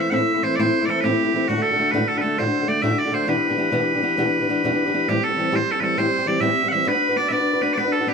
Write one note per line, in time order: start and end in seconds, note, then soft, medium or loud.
0.00 0.10 E3 medium
0.00 0.10 A3 medium
0.00 0.10 C4 medium
0.00 0.11 E4 medium
0.00 0.10 E5 medium
0.10 0.19 A2 medium
0.10 0.19 E3 medium
0.10 0.19 A3 medium
0.10 0.20 C4 medium
0.10 0.17 E4 medium
0.10 0.43 E5 medium
0.10 0.14 F#5 medium
0.18 0.35 A3 soft
0.18 0.35 C4 soft
0.18 0.33 E4 soft
0.34 0.43 A3 soft
0.34 0.42 C4 soft
0.34 0.42 E4 medium
0.43 0.58 E3 soft
0.43 0.58 A3 medium
0.43 0.58 C4 medium
0.43 0.59 E4 medium
0.43 0.56 C5 medium
0.56 0.66 A2 medium
0.56 0.66 E3 medium
0.56 0.66 A3 medium
0.56 0.66 C4 medium
0.56 0.85 C5 medium
0.56 0.59 D5 medium
0.60 0.64 E4 medium
0.65 0.81 A3 soft
0.65 0.82 C4 soft
0.65 0.79 E4 soft
0.81 0.88 A3 soft
0.81 0.87 C4 soft
0.81 0.88 E4 soft
0.85 1.02 E3 medium
0.85 1.03 A3 medium
0.85 1.03 C4 medium
0.85 1.01 A4 medium
0.85 0.89 D5 medium
0.90 1.04 E4 medium
1.01 1.10 A2 medium
1.01 1.10 E3 medium
1.01 1.10 A3 medium
1.01 1.11 C4 medium
1.01 1.48 G4 medium
1.01 1.04 B4 medium
1.05 1.09 E4 medium
1.10 1.25 A3 soft
1.10 1.26 C4 soft
1.10 1.24 E4 medium
1.25 1.33 A3 soft
1.25 1.33 C4 soft
1.25 1.32 E4 medium
1.34 1.48 E3 medium
1.34 1.48 A3 medium
1.34 1.48 C4 medium
1.34 1.49 E4 medium
1.48 1.55 D2 medium
1.48 1.56 A2 medium
1.48 1.56 D3 medium
1.48 1.56 A3 medium
1.48 1.55 D4 medium
1.48 1.62 F#4 medium
1.48 1.54 F#4 medium
1.55 1.72 D3 soft
1.55 1.71 A3 soft
1.55 1.71 D4 soft
1.55 1.69 F#4 medium
1.62 1.91 A4 medium
1.71 1.76 D3 soft
1.71 1.77 A3 medium
1.71 1.78 D4 medium
1.71 1.78 F#4 soft
1.77 1.92 D3 medium
1.77 1.93 A3 medium
1.77 1.93 D4 medium
1.77 1.94 F#4 medium
1.91 2.00 D2 medium
1.91 2.01 A2 medium
1.91 2.01 D3 medium
1.91 2.00 A3 medium
1.91 1.99 D4 medium
1.91 1.98 F#4 medium
1.91 2.08 B4 medium
1.99 2.16 D3 soft
1.99 2.16 A3 soft
1.99 2.15 D4 soft
1.99 2.14 F#4 soft
2.08 2.18 A4 medium
2.15 2.21 D3 soft
2.15 2.22 A3 soft
2.15 2.23 D4 soft
2.15 2.23 F#4 soft
2.15 2.21 B4 medium
2.21 2.37 D3 medium
2.21 2.38 A3 medium
2.21 2.38 D4 medium
2.21 2.38 A4 medium
2.25 2.39 F#4 medium
2.38 2.45 D2 medium
2.38 2.46 A2 medium
2.38 2.46 D3 medium
2.38 2.46 A3 medium
2.38 2.45 D4 medium
2.38 2.44 F#4 medium
2.38 2.68 C5 medium
2.46 2.61 D3 soft
2.46 2.60 A3 soft
2.46 2.60 D4 soft
2.46 2.59 F#4 soft
2.60 2.65 D3 soft
2.60 2.67 A3 soft
2.60 2.68 D4 soft
2.60 2.68 F#4 medium
2.67 2.82 D3 medium
2.67 2.82 A3 medium
2.67 2.83 D4 medium
2.67 2.83 F#4 medium
2.67 2.82 D5 medium
2.82 2.90 D2 medium
2.82 2.90 A2 medium
2.82 2.90 D3 medium
2.82 2.90 A3 medium
2.82 2.90 D4 medium
2.82 2.89 F#4 medium
2.82 2.99 E5 loud
2.90 3.06 D3 soft
2.90 3.06 A3 soft
2.90 3.05 D4 soft
2.90 3.04 F#4 soft
2.99 3.14 D5 medium
3.05 3.10 D3 soft
3.05 3.11 A3 soft
3.05 3.12 D4 soft
3.05 3.13 F#4 medium
3.11 3.27 D3 medium
3.11 3.27 A3 medium
3.11 3.27 D4 medium
3.11 3.28 F#4 medium
3.11 3.28 C5 medium
3.27 3.35 E2 medium
3.27 3.35 B2 medium
3.27 3.35 E3 medium
3.27 3.34 B3 medium
3.27 3.34 D4 medium
3.27 3.33 G4 medium
3.27 5.09 B4 medium
3.34 3.50 E3 soft
3.34 3.49 B3 soft
3.34 3.48 D4 soft
3.34 3.47 G4 soft
3.49 3.55 E3 soft
3.49 3.57 B3 soft
3.49 3.57 D4 soft
3.49 3.57 G4 soft
3.57 3.71 E3 medium
3.57 3.71 B3 medium
3.57 3.71 D4 medium
3.57 3.72 G4 medium
3.71 3.79 E2 medium
3.71 3.80 B2 medium
3.71 3.80 E3 medium
3.71 3.80 B3 medium
3.71 3.79 D4 medium
3.71 3.78 G4 medium
3.80 3.96 E3 soft
3.80 3.95 B3 soft
3.80 3.95 D4 soft
3.80 3.94 G4 medium
3.95 4.01 E3 soft
3.95 4.02 B3 soft
3.95 4.02 D4 medium
3.95 4.02 G4 medium
4.02 4.16 E3 medium
4.02 4.17 B3 medium
4.02 4.17 D4 medium
4.02 4.17 G4 medium
4.17 4.25 E2 medium
4.17 4.25 B2 medium
4.17 4.25 E3 medium
4.17 4.25 B3 medium
4.17 4.25 D4 medium
4.17 4.24 G4 medium
4.25 4.41 E3 soft
4.25 4.40 B3 soft
4.25 4.39 D4 soft
4.25 4.38 G4 medium
4.40 4.47 E3 soft
4.40 4.48 B3 soft
4.40 4.48 D4 soft
4.40 4.47 G4 soft
4.49 4.63 E3 medium
4.49 4.63 B3 medium
4.49 4.64 D4 medium
4.49 4.64 G4 medium
4.64 4.70 E2 medium
4.64 4.71 B2 medium
4.64 4.71 E3 medium
4.64 4.71 B3 medium
4.64 4.71 D4 medium
4.64 4.70 G4 medium
4.71 4.87 E3 soft
4.71 4.86 B3 soft
4.71 4.85 D4 medium
4.71 4.84 G4 medium
4.85 4.91 E3 soft
4.85 4.93 B3 medium
4.85 4.93 D4 soft
4.85 4.93 G4 medium
4.93 5.07 E3 medium
4.93 5.08 B3 medium
4.93 5.08 D4 medium
4.93 5.09 G4 medium
5.08 5.15 A2 medium
5.08 5.16 E3 medium
5.08 5.16 G3 medium
5.08 5.16 C4 medium
5.08 5.24 G4 medium
5.08 5.14 G4 medium
5.15 5.30 G3 soft
5.15 5.29 C4 soft
5.15 5.28 G4 soft
5.24 5.56 A4 medium
5.29 5.37 G3 soft
5.29 5.38 C4 medium
5.29 5.37 G4 medium
5.37 5.51 E3 medium
5.37 5.51 G3 medium
5.37 5.52 C4 medium
5.37 5.52 G4 medium
5.52 5.59 A2 medium
5.52 5.60 E3 medium
5.52 5.60 G3 medium
5.52 5.59 C4 medium
5.52 5.57 G4 medium
5.56 5.72 G4 soft
5.56 5.71 C5 loud
5.71 5.81 C4 soft
5.71 5.81 G4 medium
5.71 5.80 A4 medium
5.76 5.80 G3 soft
5.80 5.96 E3 medium
5.80 5.96 G3 medium
5.80 5.97 C4 medium
5.80 5.98 G4 medium
5.80 5.98 A4 medium
5.80 5.83 B4 medium
5.97 6.05 A2 medium
5.97 6.05 E3 medium
5.97 6.04 G3 medium
5.97 6.03 C4 medium
5.97 6.02 G4 medium
5.97 6.27 C5 loud
6.03 6.20 G3 soft
6.03 6.18 C4 soft
6.03 6.17 G4 soft
6.18 6.26 G3 soft
6.18 6.27 C4 medium
6.18 6.27 G4 soft
6.26 6.39 E3 medium
6.26 6.40 G3 medium
6.26 6.40 C4 medium
6.26 6.41 G4 medium
6.26 6.41 D5 medium
6.40 6.49 A2 medium
6.40 6.49 E3 medium
6.40 6.49 G3 medium
6.40 6.48 C4 medium
6.40 6.47 G4 medium
6.40 6.68 E5 loud
6.48 6.65 G3 soft
6.48 6.63 C4 medium
6.48 6.62 G4 medium
6.63 6.72 G3 soft
6.63 6.72 C4 soft
6.63 6.71 G4 medium
6.68 6.86 E3 medium
6.68 6.88 E5 loud
6.68 6.72 F#5 loud
6.73 6.87 G3 medium
6.73 6.87 C4 medium
6.73 6.88 G4 medium
6.86 6.94 B3 medium
6.86 6.95 D4 medium
6.86 6.93 F#4 medium
6.86 7.17 B4 loud
6.86 6.92 B4 medium
6.93 7.10 D4 soft
6.93 7.09 F#4 soft
6.93 7.08 B4 soft
7.09 7.16 D4 soft
7.09 7.17 F#4 soft
7.09 7.17 B4 medium
7.16 7.29 B3 medium
7.16 7.30 D4 medium
7.16 7.31 F#4 medium
7.16 7.31 B4 medium
7.16 7.29 D5 medium
7.29 7.39 B3 medium
7.29 7.39 D4 medium
7.29 7.38 F#4 medium
7.29 7.37 B4 medium
7.29 7.62 D5 loud
7.29 7.32 E5 loud
7.38 7.55 D4 soft
7.38 7.54 F#4 soft
7.38 7.52 B4 soft
7.53 7.62 D4 soft
7.53 7.62 F#4 soft
7.53 7.61 B4 medium
7.61 7.76 B3 medium
7.61 7.76 D4 medium
7.61 7.78 F#4 medium
7.61 7.73 B4 medium
7.61 7.78 B4 medium
7.73 7.78 D5 loud
7.77 7.85 B3 medium
7.77 7.85 D4 medium
7.77 7.84 F#4 medium
7.77 7.92 B4 loud
7.77 7.83 B4 medium
7.84 8.01 D4 soft
7.84 7.99 F#4 soft
7.84 7.98 B4 soft
7.92 8.08 A4 medium
7.99 8.07 D4 soft
7.99 8.08 F#4 soft
7.99 8.07 B4 soft
8.07 8.14 B3 medium
8.07 8.14 D4 medium
8.07 8.14 F#4 medium
8.07 8.14 G4 medium
8.07 8.14 B4 medium